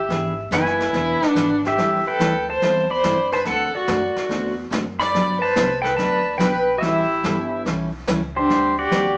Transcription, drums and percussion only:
0.10 brush sweep, snare
0.52 snare, hi-hat pedal
0.66 snare
0.80 snare
0.94 brush sweep, snare
1.22 snare
1.36 snare, hi-hat pedal
1.65 snare
1.78 brush sweep, snare
2.20 snare, hi-hat pedal
2.62 brush sweep, snare
3.03 snare, hi-hat pedal
3.32 snare
3.45 brush sweep, snare
3.88 snare, hi-hat pedal
4.16 snare
4.30 brush sweep, snare
4.72 snare, hi-hat pedal
5.00 snare
5.14 brush sweep, snare
5.56 snare, hi-hat pedal
5.85 snare
5.98 brush sweep, snare
6.40 snare, hi-hat pedal
6.82 brush sweep, snare
7.24 snare, hi-hat pedal
7.66 brush sweep, snare
8.07 snare, hi-hat pedal
8.50 brush sweep, snare
8.92 snare, hi-hat pedal

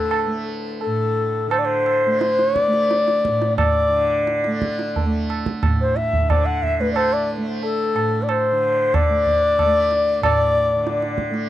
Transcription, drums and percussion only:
0.11 tabla na
0.81 tabla tin
1.51 tabla na
1.86 tabla na
2.21 tabla te
2.39 tabla te
2.56 tabla ke
2.73 tabla te
2.91 tabla te
3.08 tabla te
3.25 tabla ke
3.42 tabla te
3.58 tabla na, tabla ge
4.27 tabla te
4.44 tabla te
4.62 tabla ke
4.79 tabla te
4.96 tabla tin, tabla ge
5.30 tabla na
5.46 tabla ke
5.63 tabla na, tabla ge
5.97 tabla te
6.13 tabla ge
6.30 tabla na, tabla ge
6.63 tabla ge
6.96 tabla na
7.63 tabla tin
7.96 tabla na
8.29 tabla na
8.94 tabla na, tabla ge
9.26 tabla ge
9.59 tabla na, tabla ge
9.91 tabla te
10.23 tabla na, tabla ge
10.87 tabla te
11.02 tabla te
11.18 tabla ke
11.34 tabla te

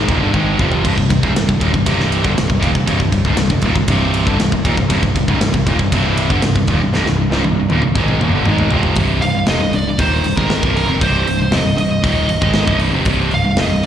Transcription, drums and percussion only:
0.09 kick, ride
0.34 kick
0.59 kick
0.72 floor tom
0.85 kick, crash
0.98 kick
1.10 kick, ride
1.23 kick
1.36 snare, ride
1.49 kick
1.61 kick, ride
1.74 kick
1.86 kick, ride
2.00 snare
2.12 ride
2.24 kick
2.38 snare, ride
2.50 kick
2.63 kick, ride
2.75 kick
2.88 kick, ride
3.00 kick
3.12 kick, ride
3.25 kick
3.37 snare, ride
3.50 kick
3.62 kick, ride
3.76 kick
3.88 kick, ride
4.14 ride
4.27 kick
4.40 snare, ride
4.52 kick
4.65 kick, ride
4.77 kick
4.90 kick, ride
5.03 kick
5.16 kick, ride
5.28 kick
5.41 snare, ride
5.54 kick
5.67 kick, ride
5.79 kick
5.92 kick, ride
6.17 ride
6.30 kick
6.42 snare, ride
6.56 kick
6.67 kick, ride
6.94 snare
7.06 snare
7.32 snare
7.44 high tom
7.70 high tom
7.82 mid tom
7.95 kick
8.08 mid tom
8.21 mid tom
8.46 mid tom
8.58 floor tom
8.71 floor tom
8.83 floor tom
8.96 kick, open hi-hat
9.22 open hi-hat
9.47 snare, open hi-hat
9.73 open hi-hat
9.99 kick, open hi-hat
10.24 open hi-hat
10.37 kick
10.50 snare, open hi-hat
10.63 kick
10.77 open hi-hat
11.01 kick, open hi-hat
11.27 open hi-hat
11.52 snare, open hi-hat
11.78 open hi-hat
12.04 kick, open hi-hat
12.29 open hi-hat
12.42 kick
12.54 snare, open hi-hat
12.68 kick
12.80 open hi-hat
13.05 kick, open hi-hat
13.31 open hi-hat
13.57 snare, open hi-hat

